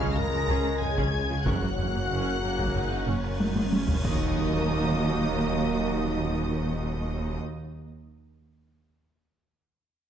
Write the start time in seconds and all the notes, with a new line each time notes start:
Already playing: C#2 C#3 G#3 C#4 F4 C#5 F5 F6
0.00 C#4 G#4, taiko
0.15 A#4 A#5 A#6, taiko low-mid
0.32 C#3 F3 C#4
0.48 C#2 C#3 C#4 G#4
0.81 G#4 G#5 G#6, taiko low-mid
0.97 C#3 C#4 G#4, taiko
1.29 C#3 F3 C#4
1.44 F#1 F#2 C#3 A#3 C#4 F#4 A#4 F#5 F#6, taiko, cymbal swell
1.48 A#3 C#4
1.61 F#2 A#3 F#4
1.77 F#1 F#2 F#3 C#4, taiko low-mid
1.94 F#2 A#3 F#4
2.10 F#1 F#2 C#4
2.42 F#1 F#2 A#3
2.59 F#2, taiko
2.75 D#4, taiko low-mid
2.91 F#2
3.07 F#1 F#2 C#4
3.24 taiko rim
3.40 D#4, taiko high
3.55 F#2, taiko high
3.72 C#4, taiko high
3.87 F#2, taiko low
4.03 D#1 D#2 F#3 A#3 D#4 F#4 A#4 D#5 D#6, impact